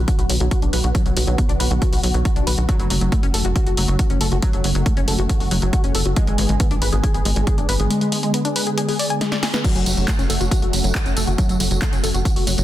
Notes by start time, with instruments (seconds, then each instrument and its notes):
Already playing: analog synth pad D3 F#3 B3 F#4
0.08 synth arpeggio sound F#4, kick, closed hi-hat
0.19 analog synth bass B1, synth arpeggio sound F#4, closed hi-hat
0.29 analog synth bass B1, synth arpeggio sound F#3, open hi-hat
0.40 analog synth bass B1, synth arpeggio sound F#3, closed hi-hat
0.51 synth arpeggio sound F#4, kick, closed hi-hat
0.62 analog synth bass B1, synth arpeggio sound D4, closed hi-hat
0.73 analog synth bass B1, synth arpeggio sound B4, open hi-hat
0.84 analog synth bass B1, synth arpeggio sound F#4, closed hi-hat
0.95 synth arpeggio sound F#3, kick, closed hi-hat
1.06 analog synth bass B1, synth arpeggio sound F#3, closed hi-hat
1.16 analog synth bass B1, synth arpeggio sound F#3, open hi-hat
1.27 analog synth bass B1, synth arpeggio sound F#3, closed hi-hat
1.38 synth arpeggio sound B3, kick, closed hi-hat
1.49 analog synth bass B1, synth arpeggio sound D4, closed hi-hat
1.60 analog synth bass B1, synth arpeggio sound B4, open hi-hat
1.71 analog synth bass B1, synth arpeggio sound F#4, closed hi-hat
1.82 synth arpeggio sound F#4, kick, closed hi-hat
1.92 analog synth bass B1, synth arpeggio sound F#4, open hi-hat
2.03 analog synth bass B1, synth arpeggio sound F#3, open hi-hat
2.14 analog synth bass B1, synth arpeggio sound F#3, closed hi-hat
2.25 synth arpeggio sound F#4, kick, closed hi-hat
2.36 analog synth bass B1, synth arpeggio sound D4, closed hi-hat
2.47 analog synth bass B1, synth arpeggio sound B4, open hi-hat
2.58 analog synth bass B1, synth arpeggio sound F#4, closed hi-hat
2.69 analog synth pad C#3 A3, synth arpeggio sound F#3, kick, closed hi-hat
2.79 analog synth bass F#1, synth arpeggio sound F#3, closed hi-hat
2.90 analog synth bass F#1, synth arpeggio sound F#3, open hi-hat
3.01 analog synth bass F#1, synth arpeggio sound F#3, closed hi-hat
3.12 synth arpeggio sound A3, kick, closed hi-hat
3.23 analog synth bass F#1, synth arpeggio sound C#4, closed hi-hat
3.34 analog synth bass F#1, synth arpeggio sound A4, open hi-hat
3.45 analog synth bass F#1, synth arpeggio sound F#4, closed hi-hat
3.56 synth arpeggio sound F#4, kick, closed hi-hat
3.66 analog synth bass F#1, synth arpeggio sound F#4, closed hi-hat
3.77 analog synth bass F#1, synth arpeggio sound F#3, open hi-hat
3.88 analog synth bass F#1, synth arpeggio sound F#3, closed hi-hat
3.99 synth arpeggio sound F#4, kick, closed hi-hat
4.10 analog synth bass F#1, synth arpeggio sound C#4, closed hi-hat
4.21 analog synth bass F#1, synth arpeggio sound A4, open hi-hat
4.32 analog synth bass F#1, synth arpeggio sound F#4, closed hi-hat
4.42 synth arpeggio sound F#3, kick, closed hi-hat
4.53 analog synth bass F#1, synth arpeggio sound F#3, closed hi-hat
4.64 analog synth bass F#1, synth arpeggio sound F#3, open hi-hat
4.75 analog synth bass F#1, synth arpeggio sound F#3, closed hi-hat
4.86 synth arpeggio sound A3, kick, closed hi-hat
4.97 analog synth bass F#1, synth arpeggio sound C#4, closed hi-hat
5.08 analog synth bass F#1, synth arpeggio sound A4, open hi-hat
5.19 analog synth bass F#1, synth arpeggio sound F#4, closed hi-hat
5.29 synth arpeggio sound F#4, kick, closed hi-hat
5.40 analog synth bass F#1, synth arpeggio sound F#4, open hi-hat
5.51 analog synth bass F#1, synth arpeggio sound F#3, open hi-hat
5.62 analog synth bass F#1, synth arpeggio sound F#3, closed hi-hat
5.73 synth arpeggio sound F#4, kick, closed hi-hat
5.84 analog synth bass F#1, synth arpeggio sound C#4, closed hi-hat
5.95 analog synth bass F#1, synth arpeggio sound A4, open hi-hat
6.06 analog synth bass F#1, synth arpeggio sound F#4, closed hi-hat
6.16 analog synth pad D3 G#3 B3 G#4, synth arpeggio sound G#3, kick, closed hi-hat
6.27 analog synth bass G#1, synth arpeggio sound G#3, closed hi-hat
6.38 analog synth bass G#1, synth arpeggio sound G#3, open hi-hat
6.49 analog synth bass G#1, synth arpeggio sound G#3, closed hi-hat
6.60 synth arpeggio sound B3, kick, closed hi-hat
6.71 analog synth bass G#1, synth arpeggio sound D4, closed hi-hat
6.82 analog synth bass G#1, synth arpeggio sound B4, open hi-hat
6.93 analog synth bass G#1, synth arpeggio sound G#4, closed hi-hat
7.03 synth arpeggio sound G#4, kick, closed hi-hat
7.14 analog synth bass G#1, synth arpeggio sound G#4, closed hi-hat
7.25 analog synth bass G#1, synth arpeggio sound G#3, open hi-hat
7.36 analog synth bass G#1, synth arpeggio sound G#3, closed hi-hat
7.47 synth arpeggio sound G#4, kick, closed hi-hat
7.58 analog synth bass G#1, synth arpeggio sound D4, closed hi-hat
7.69 analog synth bass G#1, synth arpeggio sound B4, open hi-hat
7.80 analog synth bass G#1, synth arpeggio sound G#4, closed hi-hat
7.90 synth arpeggio sound G#3, closed hi-hat
8.01 synth arpeggio sound G#3, closed hi-hat
8.12 synth arpeggio sound G#3, open hi-hat
8.23 synth arpeggio sound G#3, closed hi-hat
8.34 synth arpeggio sound B3, closed hi-hat
8.45 synth arpeggio sound D4, closed hi-hat
8.56 synth arpeggio sound B4, open hi-hat
8.67 synth arpeggio sound G#4, closed hi-hat
8.78 synth arpeggio sound G#4, closed hi-hat
8.88 synth arpeggio sound G#4, open hi-hat
8.99 synth arpeggio sound D5, open hi-hat
9.10 synth arpeggio sound G#5, closed hi-hat
9.21 synth arpeggio sound G#3, snare, closed hi-hat
9.32 synth arpeggio sound D5, snare, closed hi-hat
9.43 synth arpeggio sound G#5, snare, open hi-hat
9.54 synth arpeggio sound B4, snare, closed hi-hat
9.64 analog synth pad C#3 F#3 A3 F#4, synth arpeggio sound F#3, kick, closed hi-hat, crash, tambourine
9.75 analog synth bass F#1, synth arpeggio sound F#3, closed hi-hat, tambourine
9.86 analog synth bass F#1, synth arpeggio sound F#3, open hi-hat, tambourine
9.97 analog synth bass F#1, synth arpeggio sound F#3, closed hi-hat, tambourine
10.08 synth arpeggio sound A3, kick, clap, closed hi-hat, tambourine
10.19 analog synth bass F#1, synth arpeggio sound C#4, closed hi-hat, tambourine
10.30 analog synth bass F#1, synth arpeggio sound A4, open hi-hat, tambourine
10.40 analog synth bass F#1, synth arpeggio sound F#4, closed hi-hat, tambourine
10.51 synth arpeggio sound F#4, kick, closed hi-hat, tambourine
10.62 analog synth bass F#1, synth arpeggio sound F#4, closed hi-hat
10.73 analog synth bass F#1, synth arpeggio sound F#3, open hi-hat, tambourine
10.84 analog synth bass F#1, synth arpeggio sound F#3, closed hi-hat, tambourine
10.95 synth arpeggio sound F#4, kick, clap, closed hi-hat, tambourine
11.06 analog synth bass F#1, synth arpeggio sound C#4, closed hi-hat, tambourine
11.17 analog synth bass F#1, synth arpeggio sound A4, open hi-hat, tambourine
11.27 analog synth bass F#1, synth arpeggio sound F#4, closed hi-hat, tambourine
11.38 synth arpeggio sound F#3, kick, closed hi-hat, tambourine
11.49 analog synth bass F#1, synth arpeggio sound F#3, closed hi-hat, tambourine
11.60 analog synth bass F#1, synth arpeggio sound F#3, open hi-hat, tambourine
11.71 analog synth bass F#1, synth arpeggio sound F#3, closed hi-hat, tambourine
11.82 synth arpeggio sound A3, kick, clap, closed hi-hat, tambourine
11.93 analog synth bass F#1, synth arpeggio sound C#4, closed hi-hat, tambourine
12.03 analog synth bass F#1, synth arpeggio sound A4, open hi-hat, tambourine
12.14 analog synth bass F#1, synth arpeggio sound F#4, closed hi-hat, tambourine
12.25 synth arpeggio sound F#4, kick, closed hi-hat, tambourine
12.36 analog synth bass F#1, synth arpeggio sound F#4, open hi-hat
12.47 analog synth bass F#1, synth arpeggio sound F#3, open hi-hat, tambourine
12.58 analog synth bass F#1, synth arpeggio sound F#3, closed hi-hat, tambourine